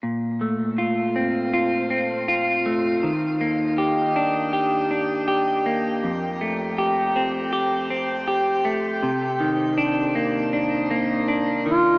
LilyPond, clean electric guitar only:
\new Staff \with { instrumentName = "Clean electric guitar" } { \time 4/4 \key bes \major \tempo 4 = 80 bes,8 a8 f'8 c'8 f'8 c'8 f'8 a8 | ees8 bes8 g'8 d'8 g'8 d'8 g'8 bes8 | f,8 a8 g'8 c'8 g'8 c'8 g'8 a8 | c8 ees8 d'8 bes8 d'8 bes8 d'8 ees8 | }